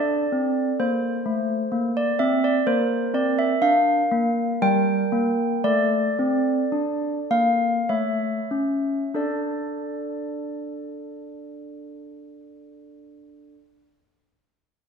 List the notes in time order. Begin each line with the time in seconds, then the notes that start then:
Already playing: D4 A4 D5
0.32 C4
0.79 A#3 C5
1.26 A3
1.72 A#3
1.97 D5
2.19 C4 E5
2.44 D5
2.66 A#3 A#4 C5
3.14 C4 D5
3.39 E5
3.62 D4 F5
4.11 A#3
4.62 G3 A#4 G5
5.12 A#3
5.64 A3 A4 D5
6.19 C4
6.72 D4
7.31 A#3 F5
7.89 A3 C#5 E5
8.51 C#4
9.14 D4 A4 D5